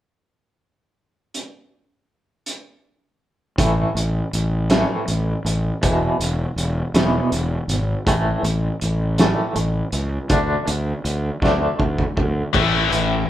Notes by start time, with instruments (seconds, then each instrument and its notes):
1.34 closed hi-hat
2.46 closed hi-hat
3.58 fingered electric bass A1, clean electric guitar A2 E3 A3, kick, closed hi-hat
3.95 fingered electric bass A1, clean electric guitar A2 E3, closed hi-hat
4.33 fingered electric bass A1, closed hi-hat
4.70 clean electric guitar A2 E3 A3, snare, closed hi-hat
5.07 fingered electric bass A1, clean electric guitar A2 E3, closed hi-hat
5.45 fingered electric bass A1, clean electric guitar A2 E3, closed hi-hat
5.82 fingered electric bass E1, clean electric guitar E2 B2 E3, kick, closed hi-hat
6.20 fingered electric bass E1, clean electric guitar E2 B2, closed hi-hat
6.56 fingered electric bass E1, closed hi-hat
6.94 fingered electric bass E1, clean electric guitar E2 B2 E3, snare, closed hi-hat
7.32 fingered electric bass E1, clean electric guitar E2 B2, closed hi-hat
7.68 fingered electric bass G#1, clean electric guitar E2 B2, closed hi-hat
8.06 fingered electric bass A1, clean electric guitar A2 E3 A3, kick, closed hi-hat
8.43 fingered electric bass A1, clean electric guitar A2 E3, closed hi-hat
8.81 fingered electric bass A1, closed hi-hat
9.18 clean electric guitar A2 E3 A3, snare, closed hi-hat
9.56 fingered electric bass A1, clean electric guitar A2 E3, closed hi-hat
9.92 fingered electric bass C#2, clean electric guitar A2 E3, closed hi-hat
10.29 fingered electric bass D2, clean electric guitar D3 A3 D4, kick, closed hi-hat
10.67 fingered electric bass D2, clean electric guitar D3 A3, closed hi-hat
11.05 fingered electric bass D2, closed hi-hat
11.42 fingered electric bass D2, clean electric guitar D3 A3 D4, kick, snare
11.79 fingered electric bass D2, clean electric guitar D3 A3, kick
11.98 kick
12.17 fingered electric bass D2, clean electric guitar D3 A3, kick
12.53 fingered electric bass A1, distorted electric guitar A2 E3 A3, clean electric guitar A2, kick, crash
12.91 fingered electric bass A1, distorted electric guitar A2 E3, clean electric guitar E3, closed hi-hat